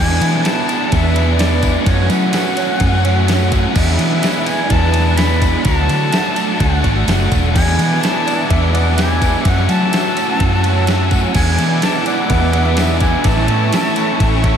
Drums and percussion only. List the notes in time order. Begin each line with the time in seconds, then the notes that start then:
0.22 ride, tambourine
0.35 snare
0.45 snare, ride, tambourine
0.68 ride, tambourine
0.92 kick, ride, tambourine
1.16 ride, tambourine
1.39 snare, ride, tambourine
1.62 kick, ride, tambourine
1.86 kick, ride, tambourine
2.10 ride, tambourine
2.33 snare, ride, tambourine
2.57 ride, tambourine
2.80 kick, ride, tambourine
3.05 ride, tambourine
3.28 snare, ride, tambourine
3.52 kick, ride, tambourine
3.76 kick, tambourine, crash
3.89 snare
3.99 ride, tambourine
4.13 snare
4.23 snare, ride, tambourine
4.46 ride, tambourine
4.70 kick, ride, tambourine
4.94 ride, tambourine
5.18 snare, ride, tambourine
5.41 kick, ride, tambourine
5.65 kick, ride, tambourine
5.89 ride, tambourine
6.13 snare, ride, tambourine
6.36 ride, tambourine
6.60 kick, ride, tambourine
6.84 kick, ride, tambourine
7.08 snare, ride, tambourine
7.32 kick, ride, tambourine
7.56 kick, crash, tambourine
7.79 ride, tambourine
7.93 snare
8.03 snare, ride, tambourine
8.27 ride, tambourine
8.50 kick, ride, tambourine
8.75 ride, tambourine
8.98 snare, ride, tambourine
9.22 kick, ride, tambourine
9.45 kick, ride, tambourine
9.58 snare
9.69 ride, tambourine
9.83 snare
9.93 snare, ride, tambourine
10.17 ride, tambourine
10.40 kick, ride, tambourine
10.64 ride, tambourine
10.87 snare, ride, tambourine
11.11 kick, ride, tambourine
11.35 kick, tambourine, crash
11.59 ride, tambourine
11.82 snare, ride, tambourine
12.06 ride, tambourine
12.30 kick, ride, tambourine
12.53 ride, tambourine
12.77 snare, ride, tambourine
13.01 kick, ride, tambourine
13.24 kick, ride, tambourine
13.37 snare
13.48 ride
13.73 snare, ride, tambourine
13.96 ride, tambourine
14.20 kick, ride, tambourine
14.44 kick, ride, tambourine